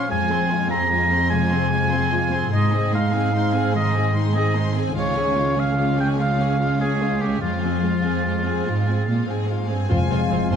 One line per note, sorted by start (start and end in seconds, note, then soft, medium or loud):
0.00 0.12 A#2 soft
0.00 2.54 F3 soft
0.00 0.12 A#3 soft
0.00 0.12 C#4 soft
0.00 0.50 F4 soft
0.00 0.13 A#4 soft
0.00 0.70 C5 soft
0.00 0.13 C#5 soft
0.00 0.11 F5 medium
0.00 0.12 C6 soft
0.00 2.18 C6 soft
0.09 2.48 F2 medium
0.09 2.54 F2 soft
0.09 0.29 G#3 soft
0.09 0.29 F4 soft
0.09 0.29 G#5 soft
0.09 0.70 G#5 medium
0.30 0.51 C4 soft
0.30 1.51 C4 soft
0.30 0.51 G#4 soft
0.30 0.52 C6 soft
0.50 0.71 G#3 soft
0.50 0.89 F4 soft
0.50 0.72 F4 soft
0.50 0.71 G#5 soft
0.70 0.91 C4 soft
0.70 0.92 G#4 soft
0.70 1.10 C5 soft
0.70 1.30 A#5 medium
0.70 0.92 C6 soft
0.90 1.09 G#3 soft
0.90 1.71 F4 soft
0.90 1.10 F4 soft
0.90 1.10 G#5 soft
1.10 1.31 C4 soft
1.10 1.32 G#4 soft
1.10 1.91 C5 soft
1.10 1.32 C6 soft
1.30 2.54 C3 soft
1.30 1.52 G#3 soft
1.30 1.53 F4 soft
1.30 2.49 G#5 medium
1.30 1.52 G#5 soft
1.50 1.72 C4 soft
1.50 2.71 C4 soft
1.50 1.73 G#4 soft
1.50 1.71 C6 soft
1.71 1.90 G#3 soft
1.71 2.11 F4 soft
1.71 1.91 F4 soft
1.71 1.90 G#5 soft
1.91 2.12 C4 soft
1.91 2.13 G#4 soft
1.91 2.31 C5 soft
1.91 2.12 C6 soft
2.10 2.32 G#3 soft
2.10 2.54 F4 soft
2.10 2.33 F4 soft
2.10 2.31 G#5 soft
2.31 2.52 C4 soft
2.31 2.54 G#4 soft
2.31 3.32 C5 soft
2.31 2.50 C6 soft
2.51 4.91 G#2 medium
2.51 4.97 G#2 medium
2.51 2.71 G#3 soft
2.51 2.72 D#4 soft
2.51 2.94 D#5 medium
2.51 2.71 C6 soft
2.72 2.93 C4 soft
2.72 3.94 C4 soft
2.72 2.94 G#4 soft
2.72 2.93 G#5 soft
2.92 3.13 G#3 soft
2.92 4.14 D#4 soft
2.92 3.14 D#4 soft
2.92 3.74 F5 medium
2.92 3.14 C6 soft
3.13 3.33 C4 soft
3.13 3.54 G#4 soft
3.13 3.34 G#4 soft
3.13 3.34 G#5 soft
3.33 3.52 G#3 soft
3.33 3.54 D#4 soft
3.33 4.53 C5 soft
3.33 3.53 C6 soft
3.53 3.74 C4 soft
3.53 4.34 G#4 soft
3.53 3.75 G#4 soft
3.53 3.74 G#5 soft
3.72 4.98 D#3 soft
3.72 3.94 G#3 soft
3.72 4.14 D#5 medium
3.72 3.94 C6 soft
3.77 3.96 D#4 soft
3.92 4.14 C4 soft
3.92 4.98 C4 soft
3.92 4.13 G#5 soft
3.97 4.16 G#4 soft
4.13 4.33 G#3 soft
4.13 4.97 D#4 soft
4.13 4.34 D#4 soft
4.13 4.32 C6 soft
4.33 4.55 C4 soft
4.33 4.74 G#4 soft
4.33 4.56 G#4 soft
4.33 4.54 D#5 medium
4.33 4.54 G#5 soft
4.54 4.76 G#3 soft
4.54 4.76 D#4 soft
4.54 4.97 C5 soft
4.54 4.75 C6 soft
4.75 4.96 C4 soft
4.75 5.55 G#4 soft
4.75 4.96 G#4 soft
4.75 4.96 G#5 soft
4.94 7.38 C#2 medium
4.94 7.43 C#3 soft
4.94 5.14 G#3 soft
4.94 5.14 F4 medium
4.94 5.14 F5 soft
5.00 5.61 C#5 medium
5.15 6.38 C#4 soft
5.15 5.36 C#4 soft
5.15 5.37 G#4 soft
5.15 5.36 G#5 soft
5.36 5.57 G#3 soft
5.36 5.57 F4 soft
5.36 6.58 F4 soft
5.36 5.57 F5 soft
5.55 5.77 C#4 soft
5.55 5.77 G#4 soft
5.55 5.77 G#5 soft
5.60 5.99 F5 medium
5.76 5.96 G#3 soft
5.76 5.96 F4 soft
5.76 6.99 C#5 soft
5.76 5.97 F5 soft
5.97 6.18 C#4 soft
5.97 6.79 G#4 soft
5.97 6.18 G#4 soft
5.97 6.09 G5 medium
5.97 6.19 G#5 soft
6.18 6.38 G#3 soft
6.18 9.92 G#3 soft
6.18 6.39 F4 soft
6.18 6.40 F5 soft
6.22 6.80 F5 medium
6.38 6.59 C#4 soft
6.38 7.43 C#4 soft
6.38 6.59 G#4 soft
6.38 6.60 G#5 soft
6.59 6.78 G#3 soft
6.59 6.78 F4 soft
6.59 7.62 F4 soft
6.59 6.79 F5 soft
6.80 7.00 C#4 soft
6.80 7.20 G#4 soft
6.80 7.00 G#4 soft
6.80 7.23 G#4 medium
6.80 7.01 G#5 soft
7.00 7.21 G#3 soft
7.00 7.21 F4 soft
7.00 7.43 C#5 soft
7.00 7.22 F5 soft
7.20 7.42 C#4 soft
7.20 7.41 G4 medium
7.20 7.41 G#4 soft
7.20 7.82 G#4 soft
7.20 7.43 G#5 soft
7.42 7.99 F2 soft
7.42 9.90 F3 soft
7.42 7.62 G#3 soft
7.42 9.24 F4 medium
7.42 7.61 F4 soft
7.42 7.62 F5 soft
7.62 7.84 C4 soft
7.62 8.86 F4 soft
7.62 7.83 G#4 soft
7.62 7.83 G#5 soft
7.83 8.04 G#3 soft
7.83 8.04 F4 soft
7.83 9.06 G#4 soft
7.83 8.04 F5 soft
8.05 8.63 F2 soft
8.05 8.26 C4 soft
8.05 8.25 G#4 soft
8.05 8.25 G#5 soft
8.24 8.45 G#3 soft
8.24 8.45 F4 soft
8.24 9.48 F5 soft
8.24 8.45 F5 soft
8.46 8.67 C4 soft
8.46 8.67 G#4 soft
8.46 9.28 C5 soft
8.46 8.67 G#5 soft
8.66 9.07 G#2 soft
8.66 8.87 G#3 soft
8.66 10.56 C4 soft
8.66 8.88 F4 soft
8.66 8.87 F5 soft
8.87 9.08 C4 soft
8.87 10.09 F4 soft
8.87 9.08 G#4 soft
8.87 9.07 G#5 soft
9.07 9.28 A#2 soft
9.07 9.27 G#3 soft
9.07 9.28 F4 soft
9.07 10.56 G#4 soft
9.07 9.26 F5 soft
9.28 9.69 G#2 soft
9.28 9.49 C4 soft
9.28 9.49 G#4 soft
9.28 9.69 C5 soft
9.28 9.49 G#5 soft
9.48 9.69 G#3 soft
9.48 9.70 F4 soft
9.48 9.70 F5 soft
9.48 10.56 F5 soft
9.68 9.91 G2 soft
9.68 9.88 C4 soft
9.68 9.90 G#4 soft
9.68 10.30 C5 soft
9.68 9.90 G#5 soft
9.89 9.99 F1 soft
9.89 10.48 F2 medium
9.89 9.99 F2 soft
9.89 10.56 F3 soft
9.89 10.48 G#3 medium
9.89 9.97 C4 soft
9.89 10.56 C4 soft
9.89 9.97 F4 soft
9.89 9.98 F4 soft
9.89 10.56 F4 soft
9.89 9.99 C5 soft
9.89 10.48 F5 medium
9.89 10.48 G#5 medium
9.93 10.56 F5 soft
10.10 10.20 F1 soft
10.10 10.19 F2 soft
10.10 10.18 C4 soft
10.10 10.51 F4 soft
10.10 10.19 F4 soft
10.10 10.19 C5 soft
10.30 10.41 F1 soft
10.30 10.39 F2 soft
10.30 10.38 C4 soft
10.30 10.38 F4 soft
10.30 10.40 F4 soft
10.30 10.56 C5 soft
10.30 10.40 C5 soft
10.50 10.56 F1 soft
10.50 10.56 F2 soft
10.50 10.56 C4 soft
10.50 10.56 F4 soft
10.50 10.56 C5 soft
10.50 10.56 G#5 medium
10.50 10.56 C6 medium